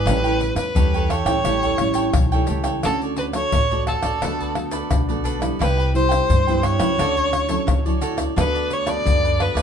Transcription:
Already playing: B4
0.06 A1 A2 G3 C#4 E4 G4 A4 C#5 G5, pandeiro, tamborim, shaker, surdo
0.24 G3 C#4 E4 A4 C#5 G5, pandeiro, shaker
0.39 muted cavaquinho stroke, pandeiro
0.55 E2 B4, pandeiro, tamborim, shaker
0.75 E2 E3 G3 C#4 E4 G4 A4 C#5 G5, pandeiro, shaker, surdo
0.94 A4 C#5 G5, pandeiro, shaker
1.10 G4 A4 C#5 G5, pandeiro, tamborim, surdo
1.25 A2 G3 C#4 E4 A4 C#5 G5, pandeiro, tamborim, shaker, surdo
1.45 A1 A2 G3 C#4 E4 G4 A4 C#5 G5, pandeiro, tamborim, shaker, surdo
1.63 A4 C#5 G5, pandeiro, shaker, surdo
1.78 A1 G3 C#4 E4, muted cavaquinho stroke, pandeiro, tamborim, shaker
1.94 A4 C#5 G5, pandeiro, shaker
2.13 B1 E3, pandeiro, tamborim, shaker, surdo
2.32 G3 C#4 E4 A4 C#5 G5, pandeiro, shaker, surdo
2.47 C#2 G4 A4 C#5 G5, pandeiro, shaker
2.64 A4 C#5 G5, pandeiro, tamborim, shaker, surdo
2.83 D2 D3 A3 C#4 F#4 A4 C#5 D5, pandeiro, tamborim, shaker, surdo
3.01 A4 C#5 D5, pandeiro, shaker
3.17 B4, pandeiro, shaker
3.33 A3 C#4 F#4 A4 C#5, pandeiro, tamborim, shaker
3.52 A1 A2, pandeiro, shaker, surdo
3.71 A3 C#4 F#4 A4 C#5 D5, pandeiro, shaker
3.87 F#4 A4 C#5 D5, pandeiro, tamborim, surdo
4.03 A1 A4 C#5 D5, pandeiro, tamborim, shaker, surdo
4.22 D2 D3 A3 B3 D4 F#4 A4 B4 D5, pandeiro, tamborim, shaker, surdo
4.40 A4 B4 D5, pandeiro, shaker, surdo
4.55 A3 B3 F#4, muted cavaquinho stroke, pandeiro, tamborim
4.71 A4 B4 D5, pandeiro, shaker
4.91 B1 D3, pandeiro, tamborim, shaker, surdo
5.09 A3 B3 F#4 A4 B4 D5, pandeiro, shaker, surdo
5.24 D4 A4 B4 D5, pandeiro, shaker
5.40 G3 B3 E4 A4 B4 D5, pandeiro, tamborim, shaker, surdo
5.59 C2 C3 E4 B4 C5 G5, pandeiro, tamborim, shaker, surdo
5.78 B4 C5 G5, pandeiro, shaker
5.94 G3 E4 C5, pandeiro
6.09 C5 G5, pandeiro, tamborim, shaker
6.29 G2, pandeiro, shaker, surdo
6.47 G3 B3 E4 B4 C5 G5, pandeiro, shaker
6.62 E4 B4 C5 C#5 G5, pandeiro, tamborim, surdo
6.79 C#2 F#3 C#4 E4 B4 C5 G5, pandeiro, tamborim, shaker, surdo
6.98 D2 D3 F#4 A4 C#5 D5, pandeiro, tamborim, shaker, surdo
7.16 A4 C#5 D5, pandeiro, shaker, surdo
7.32 muted cavaquinho stroke, pandeiro, tamborim, shaker
7.49 F#3 C#4 E4 A4 C#5, pandeiro, shaker
7.67 D2 A2, pandeiro, tamborim, shaker, surdo
7.86 F#3 C#4 E4 A4 C#5 D5, pandeiro, shaker, surdo
8.01 F#4 A4 C#5 D5, pandeiro, shaker
8.17 A4 C#5 D5, pandeiro, tamborim, shaker, surdo
8.36 D2 D3 B3 D4 F#4 A4 B4 D5, pandeiro, tamborim, shaker, surdo
8.55 A4 B4 D5, pandeiro, shaker
8.70 C#5, pandeiro, shaker
8.86 B3 F#4 A4 B4 D5, pandeiro, tamborim, shaker
9.05 F#2 D3, pandeiro, shaker, surdo
9.23 A4 B4 D5, pandeiro, shaker
9.39 B3 D4 F#4 A4 B4 D5, pandeiro, tamborim, surdo
9.55 D#2 A4 B4 D5, pandeiro, tamborim, shaker, surdo

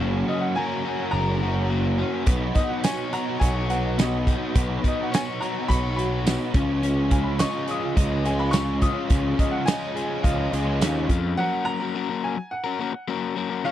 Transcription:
Already playing: F#2 C#3 F#3 A#3 C#4 F#4 A#4
0.00 F#1 F#3
0.28 C#4 D#5
0.41 F#5
0.56 F#2 C#3 F#3 A#3 C#4 A#4 G#5
0.60 F#4
0.85 F#4
1.11 F#1 A#4 A#5
1.42 F#2 C#3 F#3 A#3 C#4 F#4
1.70 A#3
1.98 C#4
2.26 B1 B2 F#3 B3, kick, closed hi-hat
2.30 D#4 F#4
2.55 D#4 D#5, kick, snare, closed hi-hat
2.69 F#5
2.84 C#5 G#5, snare, closed hi-hat, tambourine
3.13 B2 F#3 B3 D#4 F#4 A#5, closed hi-hat
3.39 B1 C#5 G#5, kick, closed hi-hat
3.70 F#4 F#5, closed hi-hat
3.98 B2 F#3 B3 D#4 F#4 D#5, snare, closed hi-hat, tambourine
4.27 D#4, kick, closed hi-hat
4.54 B1 B2 F#3 B3 D#4 F#4, kick, closed hi-hat
4.84 D#4 D#5, kick, closed hi-hat
5.03 F#5
5.12 C#5 G#5, snare, closed hi-hat, tambourine
5.40 B2 F#3 B3 D#4 F#4 A#5, closed hi-hat
5.68 B1 C#5 B5, kick, closed hi-hat
5.96 F#4 B5, closed hi-hat
6.25 B2 F#3 B3 D#4 F#4, snare, closed hi-hat, tambourine
6.53 C#2 C#3 F3 G#3 C#4 F4, kick, closed hi-hat
6.83 C#4, closed hi-hat
7.11 F4 G#5, kick, closed hi-hat
7.24 B5
7.38 C#3 F3 G#3 C#4 D#5 C#6, snare, closed hi-hat, tambourine
7.43 F4
7.68 G#4 D#6, closed hi-hat
7.97 C#2 D#5, kick, closed hi-hat
8.24 C#3 F3 G#3 C#4 F4 G#4 G#5, closed hi-hat
8.39 B5
8.51 C#4 C#6, snare, closed hi-hat, tambourine
8.81 C#3 F3 G#3 C#4 F4 D#6, kick, closed hi-hat
9.10 C#2 C#4, kick, closed hi-hat
9.39 F4 D#5, kick, closed hi-hat
9.51 F#5
9.65 C#3 F3 G#3 C#4 D#5 G#5, snare, closed hi-hat, tambourine
9.70 F4
9.96 G#4, closed hi-hat
10.23 C#2 D#5 F5, kick, closed hi-hat
10.51 C#2 C#3 F3 G#3 C#4 F4 G#4, closed hi-hat
10.81 D#2 C#4, snare, closed hi-hat, tambourine
11.09 F2 F4, kick, closed hi-hat
11.37 F#3 A#3 C#4 F#4 A#4 F#5
11.65 A#5
11.80 C#4 F#4 A#4
11.95 F#3 A#3 C#4 F#4 A#4
12.09 C#4 F#4 A#4
12.24 G#5
12.37 muted overdriven electric guitar stroke
12.51 F#5
12.64 C#4 F#4 A#4
12.79 A#3 C#4 F#4 A#4
12.93 muted overdriven electric guitar stroke
13.08 F#3 A#3 C#4 F#4 A#4
13.36 A#3 C#4 F#4 A#4
13.50 C#4 F#4 A#4
13.64 C#3 F3 G#3 C#4 F4 C#5 F5

